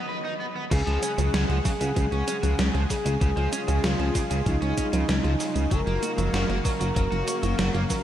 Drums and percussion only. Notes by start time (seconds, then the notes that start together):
0.71 kick, closed hi-hat, crash, cabasa
0.87 closed hi-hat
1.03 closed hi-hat, cabasa
1.18 closed hi-hat, cabasa
1.34 snare, closed hi-hat, cabasa
1.50 closed hi-hat
1.65 kick, open hi-hat, cabasa
1.81 closed hi-hat, cabasa
1.96 kick, closed hi-hat, cabasa
2.12 closed hi-hat
2.28 closed hi-hat, cabasa
2.43 closed hi-hat, cabasa
2.59 snare, closed hi-hat, cabasa
2.75 closed hi-hat
2.90 kick, open hi-hat, cabasa
3.06 closed hi-hat, cabasa
3.21 kick, closed hi-hat, cabasa
3.37 closed hi-hat
3.53 closed hi-hat, cabasa
3.68 closed hi-hat, cabasa
3.84 snare, closed hi-hat, cabasa
3.99 closed hi-hat
4.15 kick, open hi-hat, cabasa
4.31 closed hi-hat, cabasa
4.46 kick, closed hi-hat, cabasa
4.62 closed hi-hat
4.78 kick, closed hi-hat, cabasa
4.93 closed hi-hat, cabasa
5.09 snare, closed hi-hat, cabasa
5.24 closed hi-hat
5.40 open hi-hat, cabasa
5.56 closed hi-hat, cabasa
5.71 kick, closed hi-hat, cabasa
5.87 closed hi-hat
6.03 closed hi-hat, cabasa
6.18 closed hi-hat, cabasa
6.34 snare, closed hi-hat, cabasa
6.50 closed hi-hat
6.65 kick, open hi-hat, cabasa
6.81 closed hi-hat, cabasa
6.96 kick, closed hi-hat, cabasa
7.12 closed hi-hat
7.28 closed hi-hat, cabasa
7.43 closed hi-hat, cabasa
7.59 snare, closed hi-hat, cabasa
7.75 closed hi-hat
7.90 kick, open hi-hat, cabasa